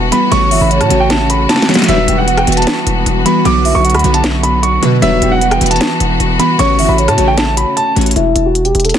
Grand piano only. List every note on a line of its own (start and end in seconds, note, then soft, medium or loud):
0.12 0.28 B5 medium
0.32 0.59 C#6 loud
0.61 0.77 B5 medium
0.81 0.97 A5 medium
1.00 1.08 G5 medium
1.10 1.26 A5 medium
1.30 1.46 B5 medium
1.49 1.65 A5 medium
1.89 2.16 E5 loud
2.18 2.34 F#5 medium
2.38 2.54 G5 medium
2.57 3.22 A5 medium
3.26 3.42 B5 medium
3.45 3.73 D6 loud
3.75 3.91 C#6 medium
3.95 4.11 B5 medium
4.14 4.22 A5 medium
4.43 4.60 B5 medium
4.63 4.79 C#6 medium
5.02 5.30 E5 loud
5.32 5.48 F#5 medium
5.51 5.67 G5 medium
5.71 6.35 A5 medium
6.39 6.56 B5 medium
6.59 6.87 C#6 loud
6.89 7.05 B5 medium
7.09 7.25 A5 medium
7.28 7.36 G5 medium
7.38 7.54 A5 medium
7.57 7.73 B5 medium
7.77 7.93 A5 medium
8.16 8.44 E4 loud
8.46 8.62 F#4 medium
8.65 8.81 G4 medium
8.85 8.99 A4 medium